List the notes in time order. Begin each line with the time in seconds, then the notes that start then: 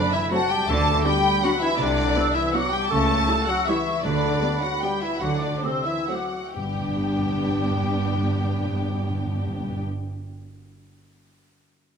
Already playing: D3 D4 D5 B5
0.12 E3 E4 E5
0.31 F#3 A3 C4 F#4 F#5 A5
0.49 G3 G4 G5
0.67 D2 D3 A3 A4 A5 D6
1.04 G3 B3 D4 G4 G5 B5
1.42 F#3 B3 D4 F#4 F#5
1.61 E3 E4 E5
1.78 C2 C3 D3 D4 D5
2.15 B3 E4 E6
2.34 E3 E4 E5
2.53 F#3 B3 E4 F#4 F#5 D6
2.72 G3 G4 G5
2.89 C#2 C#3 A3 A4 A5 C#6
3.28 G3 E4 E6
3.47 F#3 F#4 F#5
3.66 E3 G3 E4 E5 C#6
4.03 D2 D3 D4 D5 B5
4.43 G3 B3 B5
4.61 F#3 F#4 F#5
4.82 G3 B3 G4 G5
5.02 E3 E4 E5
5.20 D2 D3 F#3 F#4 F#5 D6
5.40 D3 D4 D5
5.62 C3 A3 C4 C5 E6
5.85 E3 E4 E5
6.08 F#3 A3 C4 F#4 F#5 D6
6.55 G1 G2 G3 B3 D4 G4 G5
6.65 G2
6.73 G2
6.80 G2
6.88 G2
6.96 G2
7.03 G2
7.11 G2
7.18 G2
7.26 G2
7.33 G2
7.41 G2
7.48 G2
7.56 G2
7.63 G2
7.71 G2
7.78 G2
7.85 G2
7.92 G2
8.00 G2
8.08 G2
8.14 G2
8.21 G2
8.28 G2
8.36 G2
8.44 G2
8.51 G2
8.59 G2
8.65 G2
8.73 G2
8.80 G2
8.88 G2
8.95 G2
9.03 G2
9.10 G2
9.17 G2
9.25 G2
9.32 G2
9.39 G2
9.47 G2
9.54 G2
9.61 G2
9.69 G2
9.76 G2